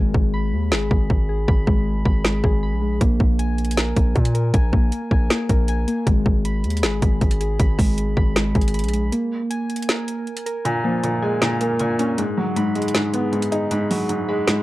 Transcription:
Already playing: G#1 G#3
0.14 G#1, kick
0.34 B5
0.53 D#2
0.72 G#1 G#4, snare
0.91 G#1, kick
1.10 G#1, kick
1.29 G#4
1.48 G#1 B5, kick
1.67 G#1 G#3, kick
2.05 G#1 B5, kick
2.24 G#3, snare
2.44 G#1 G#4, kick
2.63 B5
2.72 A#1
2.82 G#3
3.01 A#1 A#3, kick, closed hi-hat
3.20 A#1, kick
3.39 G#5, closed hi-hat
3.58 closed hi-hat
3.65 closed hi-hat
3.71 closed hi-hat
3.77 A#4, snare, closed hi-hat
3.96 A#1, kick, closed hi-hat
4.16 A#2, kick, closed hi-hat
4.25 closed hi-hat
4.35 A#4, closed hi-hat
4.54 A#1 G#5, kick, closed hi-hat
4.73 A#1 A#3, kick
4.92 closed hi-hat
5.11 A#1 G#5, kick
5.30 A#3, snare, closed hi-hat
5.49 A#1 A#4, kick, closed hi-hat
5.68 G#5, closed hi-hat
5.88 A#3, closed hi-hat
6.07 G#1 G#3, kick, closed hi-hat
6.26 G#1, kick
6.45 B5, closed hi-hat
6.64 D#2, closed hi-hat
6.70 closed hi-hat
6.77 closed hi-hat
6.83 G#1 G#4, snare, closed hi-hat
7.02 G#1, kick, closed hi-hat
7.21 G#1, kick, closed hi-hat
7.31 closed hi-hat
7.40 G#4, closed hi-hat
7.60 G#1 B5, kick, closed hi-hat
7.79 G#1 G#3, kick, open hi-hat
7.98 closed hi-hat
8.17 G#1 B5, kick
8.36 G#3, snare, closed hi-hat
8.55 G#1 G#4, kick, closed hi-hat
8.61 closed hi-hat
8.68 closed hi-hat
8.74 B5, closed hi-hat
8.79 closed hi-hat
8.84 A#1, closed hi-hat
8.88 closed hi-hat
8.93 G#3, closed hi-hat
9.12 A#3, closed hi-hat
9.50 G#5, closed hi-hat
9.70 closed hi-hat
9.76 closed hi-hat
9.82 closed hi-hat
9.89 A#4, snare, closed hi-hat
10.08 closed hi-hat
10.27 closed hi-hat
10.37 closed hi-hat
10.46 A#4, closed hi-hat
10.65 A#2 G#5, closed hi-hat
10.84 F3 A#3
11.03 A#2, closed hi-hat
11.22 G#3 G#5
11.42 A#2 A#3, snare, closed hi-hat
11.61 A#3 A#4, closed hi-hat
11.79 A#2 G#5, closed hi-hat
11.99 A#3 C#4, closed hi-hat
12.18 G#2 G#3, closed hi-hat
12.37 F#3
12.56 G#2 B5, closed hi-hat
12.75 G#3, closed hi-hat
12.82 closed hi-hat
12.88 closed hi-hat
12.94 G#2 G#4, snare, closed hi-hat
13.14 B3, closed hi-hat
13.32 G#2, closed hi-hat
13.42 closed hi-hat
13.52 D#4 G#4, closed hi-hat
13.71 G#2 B5, closed hi-hat
13.90 F#3 G#3, open hi-hat
14.09 G#2, closed hi-hat
14.29 G#3 B5
14.47 G#2 G#3, snare, closed hi-hat

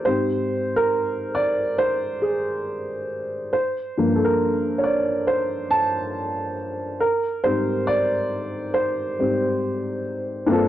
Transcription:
0.05 G#2 C4 G4 C5
0.76 A#4
1.35 D5
1.78 C5
2.22 G#4
3.53 C5
3.97 G2 F3 A#3
4.15 A4
4.25 A#4
4.78 C#5
4.84 D5
5.27 C5
5.71 A5
7.00 A#4
7.44 G#2 G3 C4 C5
7.87 D5
8.74 C5
9.19 G#2 G3 C4
10.46 G2 A#3 C4
10.51 D4 F4 A4

